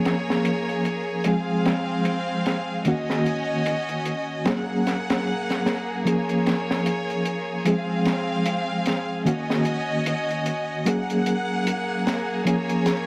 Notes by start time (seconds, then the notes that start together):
Already playing: F3 A#3 C#4 G#4 C#5
0.05 snare, closed hi-hat
0.30 snare
0.45 closed hi-hat
0.69 closed hi-hat
0.85 closed hi-hat
1.24 F3 G#3 C4 G#4 F5, closed hi-hat
1.65 snare, closed hi-hat
2.05 closed hi-hat
2.46 snare, closed hi-hat
2.85 D#3 A#3 C#4 F#4 D#5, closed hi-hat
3.10 snare
3.26 closed hi-hat
3.66 closed hi-hat
3.89 closed hi-hat
4.05 closed hi-hat
4.45 F#3 A#3 C#4 G#4 F#5, snare, closed hi-hat
4.87 snare, closed hi-hat
5.10 snare, closed hi-hat
5.50 snare, closed hi-hat
5.66 snare, closed hi-hat
6.05 F3 A#3 C#4 G#4 C#5, closed hi-hat
6.29 closed hi-hat
6.46 snare, closed hi-hat
6.71 snare
6.86 closed hi-hat
7.10 closed hi-hat
7.25 closed hi-hat
7.65 F3 G#3 C4 G#4 F5, closed hi-hat
8.05 snare, closed hi-hat
8.46 closed hi-hat
8.86 snare, closed hi-hat
9.25 D#3 A#3 C#4 F#4 D#5, closed hi-hat
9.50 snare
9.65 closed hi-hat
10.06 closed hi-hat
10.31 closed hi-hat
10.46 closed hi-hat
10.85 F#3 A#3 C#4 G#4 F#5, closed hi-hat
11.10 closed hi-hat
11.26 closed hi-hat
11.67 closed hi-hat
12.07 snare, closed hi-hat
12.45 F3 A#3 C#4 G#4 C#5, closed hi-hat
12.69 closed hi-hat
12.86 snare, closed hi-hat